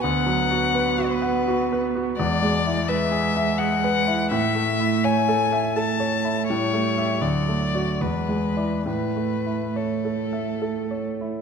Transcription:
<<
  \new Staff \with { instrumentName = "Violin" } { \time 3/4 \key a \major \tempo 4 = 83 fis''4. b'4 r8 | d''4 e''4 fis''4 | e''4 gis''4 a''4 | cis''4 d''4 b'4 |
b'4 a'4. r8 | }
  \new Staff \with { instrumentName = "Grand piano" } { \time 3/4 \key a \major \tuplet 3/2 { d,8 fis8 fis'8 b'8 fis'8 fis''8 fis'8 b'8 fis'8 } | \tuplet 3/2 { e,8 gis8 e'8 b'8 gis'8 e''8 gis'8 b'8 e'8 } | \tuplet 3/2 { a,8 a8 e'8 cis''8 a'8 e''8 a'8 cis''8 e'8 } | \tuplet 3/2 { a,8 a8 <g' e''>8 d,8 a8 <fis' d''>8 e,8 gis8 <e' d''>8 } |
\tuplet 3/2 { a,8 a8 e'8 cis''8 a'8 e''8 a'8 cis''8 e'8 } | }
  \new Staff \with { instrumentName = "Cello" } { \clef bass \time 3/4 \key a \major b2. | gis4 gis2 | a2 a4 | g4 fis4 gis4 |
a4 a4.~ a16 r16 | }
>>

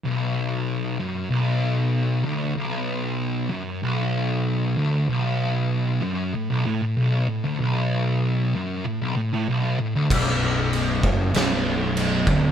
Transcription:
<<
  \new Staff \with { instrumentName = "Distorted electric guitar" } { \clef bass \time 4/4 \key b \minor \tempo 4 = 95 b,,4. fis,8 b,,4. d,8 | b,,4. fis,8 b,,4. d,8 | b,,4. fis,8 a,16 b,,16 a,16 a,16 b,,8 a,16 d,16 | b,,4. fis,8 a,16 b,,16 a,16 a,16 b,,8 a,16 d,16 |
b,,4. fis,8 b,,4. d,8 | }
  \new Staff \with { instrumentName = "Picked electric bass" } { \clef bass \time 4/4 \key b \minor r1 | r1 | r1 | r1 |
b,,,4. fis,,8 b,,,4. d,,8 | }
  \new DrumStaff \with { instrumentName = "Drums" } \drummode { \time 4/4 r4 r4 r4 r4 | r4 r4 r4 r4 | r4 r4 r4 r4 | r4 r4 r4 r4 |
<cymc bd>4 cymc8 bd8 <cymc sn>4 cymc8 bd8 | }
>>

